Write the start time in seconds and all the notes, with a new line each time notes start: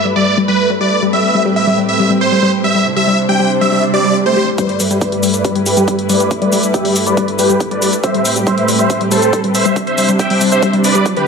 Already playing: G2 G3 A3 E4 B4
0.05 G3
0.16 G3 D5
0.38 G3
0.48 G3 B4
0.70 G3
0.81 G3 D5
1.02 G3
1.13 A2 G3 C4 G4 E5
1.35 G3
1.46 G3
1.56 E5
1.67 G3
1.78 G3
1.89 E5
1.99 G3
2.10 G3
2.21 C5
2.32 G3
2.42 G3
2.64 G3 E5
2.75 G3
2.86 C3 G3 D4 E4 C5
2.96 G3 E5
3.07 G3
3.29 G3 G5
3.40 G3
3.61 G3 E5
3.72 G3, swell
3.94 G4 D5
4.04 G3
4.26 A3 C5
4.37 G4
4.58 G2 G3 A3 E4 B4 D5, kick, closed hi-hat, shaker
4.69 closed hi-hat
4.80 G3, open hi-hat, shaker
4.91 G3, closed hi-hat, shaker
5.01 B4 D5, kick, closed hi-hat, shaker
5.12 G3, closed hi-hat
5.23 G3, open hi-hat, shaker
5.34 B4 D5, closed hi-hat, shaker
5.45 G3, kick, closed hi-hat, shaker
5.55 G3, closed hi-hat
5.66 G4 B4, open hi-hat, shaker
5.77 G3, closed hi-hat, shaker
5.88 G3, kick, closed hi-hat, shaker
5.99 closed hi-hat
6.09 G3 B4 D5, open hi-hat, shaker
6.20 G3, closed hi-hat, shaker
6.31 kick, closed hi-hat, shaker
6.42 G3 B4 D5, closed hi-hat
6.52 G3, open hi-hat, shaker
6.63 closed hi-hat, shaker
6.74 G3 G4 E5, kick, closed hi-hat, shaker
6.85 G3, open hi-hat
6.96 open hi-hat, shaker
7.06 G3 B4 D5, closed hi-hat, shaker
7.17 G3, kick, closed hi-hat, shaker
7.28 closed hi-hat
7.39 G3 G4 B4, open hi-hat, shaker
7.50 G3, shaker
7.60 kick, closed hi-hat, shaker
7.71 G3 B4 D5, closed hi-hat
7.82 G3, open hi-hat, shaker
7.93 closed hi-hat, shaker
8.04 A2 G3 C4 G4 B4 C5 E5, kick, closed hi-hat, shaker
8.14 G3, closed hi-hat
8.25 open hi-hat, shaker
8.36 G3, closed hi-hat, shaker
8.47 G3 C5 E5, kick, closed hi-hat, shaker
8.58 closed hi-hat
8.68 G3, open hi-hat, shaker
8.79 G3 C5 E5, closed hi-hat, shaker
8.90 kick, closed hi-hat, shaker
9.01 G3, closed hi-hat
9.11 G3 A4 C5, open hi-hat, shaker
9.22 closed hi-hat, shaker
9.33 G3, kick, closed hi-hat, shaker
9.44 G3, closed hi-hat
9.55 C5 E5, open hi-hat, shaker
9.65 G3, closed hi-hat, shaker
9.76 C3 G3 D4 E4 C5, kick, closed hi-hat, shaker
9.87 C5 E5, closed hi-hat
9.98 G3, open hi-hat, shaker
10.09 G3, closed hi-hat, shaker
10.19 E5 G5, kick, closed hi-hat, shaker
10.30 G3, open hi-hat
10.41 G3, open hi-hat, shaker
10.52 C5 E5, shaker
10.63 G3, kick, closed hi-hat, shaker
10.73 G3, closed hi-hat
10.84 B4 D5, open hi-hat, shaker
10.95 G3, closed hi-hat, shaker
11.06 F#3, kick, closed hi-hat, shaker
11.17 D3 G4 B4, closed hi-hat